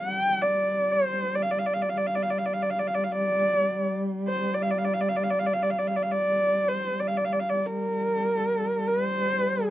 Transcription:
0.00 0.44 G5 medium
0.04 6.95 G3 medium
0.42 0.94 D5 medium
0.92 1.37 C5 medium
1.36 1.44 D5 medium
1.43 1.53 F5 medium
1.51 1.61 D5 medium
1.59 1.68 F5 medium
1.66 1.75 D5 medium
1.74 1.84 F5 medium
1.82 1.91 D5 medium
1.90 1.99 F5 medium
1.98 2.08 D5 medium
2.07 2.17 F5 medium
2.16 2.25 D5 medium
2.23 2.32 F5 medium
2.30 2.40 D5 medium
2.39 2.48 F5 medium
2.46 2.55 D5 medium
2.53 2.64 F5 medium
2.62 2.72 D5 medium
2.70 2.81 F5 medium
2.79 2.89 D5 medium
2.88 2.96 F5 medium
2.95 3.06 D5 medium
3.04 3.14 F5 medium
3.12 3.89 D5 medium
4.28 4.56 C5 medium
4.54 4.64 D5 medium
4.63 4.72 F5 medium
4.71 4.80 D5 medium
4.78 4.86 F5 medium
4.85 4.96 D5 medium
4.94 5.03 F5 medium
5.01 5.10 D5 medium
5.09 5.18 F5 medium
5.17 5.25 D5 medium
5.24 5.32 F5 medium
5.30 5.41 D5 medium
5.40 5.48 F5 medium
5.46 5.55 D5 medium
5.53 5.64 F5 medium
5.63 5.72 D5 medium
5.70 5.80 F5 medium
5.79 5.89 D5 medium
5.87 5.98 F5 medium
5.96 6.04 D5 medium
6.03 6.13 F5 medium
6.11 6.70 D5 medium
6.68 7.01 C5 medium
6.96 9.70 G3 medium
7.00 7.09 D5 medium
7.08 7.19 F5 medium
7.17 7.26 D5 medium
7.25 7.34 F5 medium
7.33 7.42 D5 medium
7.40 7.51 F5 medium
7.50 7.68 D5 medium
7.66 8.89 A#4 medium
8.88 9.70 C5 medium

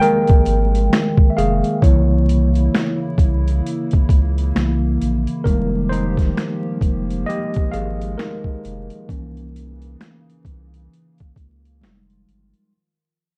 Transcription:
0.00 1.78 D#3 medium
0.00 1.79 D#3 medium
0.00 1.78 F3 soft
0.00 1.78 G#3 soft
0.00 1.78 G#3 medium
0.00 1.78 A#3 medium
0.00 11.78 A#3 medium
0.00 1.84 G4 medium
0.00 1.38 G#4 medium
0.00 1.28 A#4 medium
0.00 1.84 D#5 medium
0.00 1.37 F5 loud
0.00 1.78 G5 medium
0.00 1.27 G5 loud
0.00 closed hi-hat medium
0.27 kick medium
0.27 closed hi-hat soft
0.46 0.89 G#1 medium
0.46 closed hi-hat medium
0.75 closed hi-hat soft
0.93 finger snap medium
0.93 snare loud
0.93 closed hi-hat medium
1.17 kick medium
1.30 1.36 E5 medium
1.37 1.63 F1 medium
1.37 1.79 G#4 medium
1.37 1.83 F5 medium
1.37 closed hi-hat medium
1.64 closed hi-hat soft
1.82 2.69 C2 loud
1.82 2.46 C#3 medium
1.82 5.42 C#3 medium
1.82 2.46 E3 soft
1.82 2.47 A#3 medium
1.82 5.42 E4 medium
1.82 4.51 E4 medium
1.82 4.51 C#5 medium
1.82 kick loud
1.82 closed hi-hat medium
2.29 closed hi-hat medium
2.55 closed hi-hat medium
2.74 finger snap medium
2.74 snare loud
2.74 closed hi-hat medium
3.18 3.61 C2 loud
3.18 kick medium
3.18 closed hi-hat medium
3.48 closed hi-hat soft
3.67 closed hi-hat medium
3.91 kick medium
3.91 closed hi-hat soft
4.09 4.52 C#2 medium
4.09 kick medium
4.09 closed hi-hat medium
4.38 closed hi-hat soft
4.55 4.98 C2 medium
4.55 5.42 C#3 medium
4.55 5.42 E3 soft
4.55 5.42 A#3 medium
4.55 finger snap medium
4.55 snare medium
4.55 closed hi-hat medium
5.01 5.27 A#1 medium
5.01 closed hi-hat medium
5.27 closed hi-hat soft
5.44 6.33 F1 loud
5.44 6.78 D#3 medium
5.44 9.05 D#3 medium
5.44 9.06 F3 medium
5.44 6.78 G3 medium
5.44 6.78 G#3 soft
5.44 6.78 A#3 medium
5.44 5.88 D#4 medium
5.44 7.26 G4 medium
5.44 5.92 A#4 medium
5.44 kick loud
5.44 closed hi-hat medium
5.89 7.24 D#4 medium
5.89 7.31 C5 loud
5.89 closed hi-hat medium
6.17 kick loud
6.17 snare soft
6.17 closed hi-hat medium
6.37 finger snap medium
6.37 snare loud
6.37 closed hi-hat medium
6.81 7.25 F1 medium
6.81 kick medium
6.81 closed hi-hat medium
7.10 closed hi-hat soft
7.26 9.07 G#3 medium
7.26 7.70 G4 medium
7.26 7.69 D#5 loud
7.26 closed hi-hat medium
7.54 kick loud
7.54 closed hi-hat soft
7.72 8.16 G#1 medium
7.72 7.94 G#4 medium
7.72 7.92 F5 loud
7.72 closed hi-hat medium
8.01 closed hi-hat soft
8.18 11.78 D#4 medium
8.18 11.77 A#4 medium
8.18 finger snap medium
8.18 snare loud
8.18 closed hi-hat medium
8.44 kick medium
8.65 8.90 F1 medium
8.65 closed hi-hat medium
8.90 closed hi-hat soft
9.09 9.96 C2 loud
9.09 11.79 C#3 medium
9.09 10.41 E3 medium
9.09 11.79 E3 medium
9.09 10.42 A#3 soft
9.09 10.42 C#4 medium
9.09 kick loud
9.09 closed hi-hat medium
9.37 closed hi-hat soft
9.56 closed hi-hat medium
9.82 closed hi-hat medium
10.01 finger snap medium
10.01 snare loud
10.01 closed hi-hat medium
10.30 closed hi-hat soft
10.45 10.88 C2 medium
10.45 kick medium
10.45 closed hi-hat medium
10.74 closed hi-hat soft
10.94 closed hi-hat medium
11.18 kick medium
11.18 closed hi-hat soft
11.36 11.84 C#2 medium
11.36 kick medium
11.36 closed hi-hat medium
11.65 closed hi-hat soft
11.81 12.25 F1 loud
11.81 12.72 D#3 medium
11.81 12.72 F3 medium
11.81 12.68 G3 medium
11.81 12.69 G#3 soft
11.81 12.69 D#4 medium
11.81 12.72 F4 medium
11.81 finger snap medium
11.81 snare medium
11.81 closed hi-hat medium
12.10 closed hi-hat soft
12.28 12.53 G1 medium
12.28 closed hi-hat medium
12.54 closed hi-hat soft

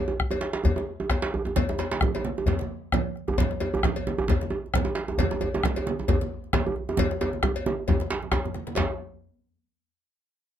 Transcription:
0.08 djembe tone medium
0.19 bombo rim loud
0.19 bombo low loud
0.19 djembe slap soft
0.31 bombo rim soft
0.31 cowbell medium
0.31 djembe tone medium
0.41 bombo rim soft
0.41 djembe slap medium
0.53 bombo rim soft
0.53 djembe slap loud
0.64 bombo rim soft
0.64 bombo low loud
0.64 cowbell medium
0.64 djembe tone medium
0.64 djembe bass medium
0.65 djembe bass medium
0.76 djembe slap medium
0.76 djembe tone medium
1.00 djembe slap soft
1.00 djembe tone medium
1.10 bombo rim loud
1.10 bombo low loud
1.10 cowbell medium
1.10 djembe slap medium
1.10 djembe tone medium
1.22 djembe slap loud
1.22 djembe slap soft
1.34 djembe bass medium
1.45 bombo rim soft
1.45 djembe slap soft
1.45 djembe tone medium
1.56 bombo low medium
1.56 cowbell medium
1.56 high conga medium
1.56 low conga medium
1.56 djembe bass medium
1.69 bombo rim soft
1.69 djembe slap medium
1.69 djembe tone medium
1.78 cowbell medium
1.78 djembe slap medium
1.78 djembe tone medium
1.91 djembe slap loud
1.91 high conga medium
2.01 bombo rim loud
2.01 bombo low loud
2.01 low conga medium
2.01 djembe bass medium
2.14 cowbell medium
2.14 djembe tone medium
2.25 high conga medium
2.37 djembe slap soft
2.37 high conga soft
2.37 djembe tone medium
2.46 bombo low loud
2.46 cowbell soft
2.46 djembe slap soft
2.46 djembe slap medium
2.46 djembe tone medium
2.46 djembe bass medium
2.46 low conga medium
2.59 djembe slap medium
2.59 high conga medium
2.92 bombo rim loud
2.92 bombo low loud
2.92 cowbell medium
2.92 djembe tone medium
2.92 high conga medium
2.92 low conga loud
3.16 bombo rim soft
3.16 high conga soft
3.28 bombo rim soft
3.28 djembe tone medium
3.28 djembe bass loud
3.38 bombo low loud
3.38 cowbell medium
3.38 djembe slap medium
3.38 high conga medium
3.38 djembe bass medium
3.38 low conga medium
3.51 bombo rim soft
3.51 djembe slap medium
3.60 cowbell medium
3.60 djembe tone medium
3.74 high conga medium
3.74 djembe bass loud
3.83 bombo rim loud
3.83 bombo low loud
3.83 djembe slap medium
3.83 low conga medium
3.96 cowbell medium
3.96 djembe tone medium
4.07 high conga medium
4.07 djembe tone medium
4.18 djembe slap soft
4.18 high conga soft
4.18 djembe bass loud
4.28 bombo low loud
4.28 cowbell medium
4.28 djembe slap medium
4.28 djembe slap soft
4.28 djembe tone medium
4.28 djembe bass medium
4.28 low conga medium
4.41 djembe slap medium
4.41 high conga medium
4.50 djembe tone medium
4.66 high conga soft
4.74 bombo rim loud
4.74 bombo low loud
4.74 cowbell medium
4.74 djembe tone medium
4.74 high conga medium
4.74 low conga medium
4.85 djembe tone loud
4.95 bombo rim soft
4.95 djembe slap medium
4.95 high conga soft
5.08 bombo rim soft
5.08 djembe tone medium
5.18 bombo low loud
5.18 cowbell medium
5.18 djembe tone medium
5.18 high conga medium
5.18 djembe bass medium
5.18 low conga medium
5.30 bombo rim soft
5.30 djembe slap medium
5.30 djembe tone medium
5.41 cowbell soft
5.41 djembe tone medium
5.41 djembe bass medium
5.54 djembe tone loud
5.54 high conga medium
5.63 bombo rim loud
5.63 bombo low loud
5.63 djembe slap medium
5.63 low conga medium
5.76 cowbell medium
5.76 djembe tone medium
5.86 djembe tone medium
5.86 high conga medium
5.99 djembe slap soft
5.99 high conga soft
5.99 djembe tone medium
6.08 bombo low loud
6.08 cowbell medium
6.08 djembe slap soft
6.08 djembe tone medium
6.08 djembe bass medium
6.08 low conga medium
6.08 djembe bass medium
6.21 djembe slap medium
6.21 high conga medium
6.44 high conga soft
6.53 bombo rim loud
6.53 bombo low loud
6.53 cowbell medium
6.53 djembe slap loud
6.53 high conga medium
6.53 djembe tone medium
6.53 low conga medium
6.67 djembe bass medium
6.76 bombo rim soft
6.76 high conga soft
6.89 bombo rim soft
6.89 djembe tone medium
6.97 bombo low loud
6.97 cowbell medium
6.97 high conga medium
6.97 djembe tone loud
6.97 low conga medium
6.97 djembe bass medium
7.10 bombo rim soft
7.10 djembe slap medium
7.21 cowbell medium
7.21 djembe tone loud
7.21 djembe tone medium
7.33 high conga medium
7.43 bombo rim loud
7.43 bombo low loud
7.43 djembe tone loud
7.43 low conga medium
7.56 cowbell medium
7.56 djembe tone medium
7.66 djembe slap soft
7.66 high conga medium
7.66 djembe tone loud
7.88 bombo low loud
7.88 cowbell medium
7.88 djembe tone medium
7.88 djembe tone loud
7.88 djembe bass medium
7.88 low conga medium
8.00 djembe slap medium
8.00 high conga medium
8.10 bombo rim soft
8.10 djembe slap loud
8.22 bombo rim soft
8.22 djembe slap soft
8.22 low conga soft
8.32 bombo rim loud
8.32 bombo low loud
8.32 cowbell soft
8.32 djembe slap loud
8.32 djembe bass soft
8.32 low conga medium
8.44 bombo rim soft
8.44 djembe bass medium
8.44 low conga medium
8.54 bombo rim soft
8.54 djembe slap medium
8.54 high conga medium
8.67 bombo rim soft
8.67 djembe slap medium
8.67 high conga medium
8.76 bombo low medium
8.76 cowbell medium
8.76 djembe slap loud
8.76 low conga medium
8.76 djembe bass medium

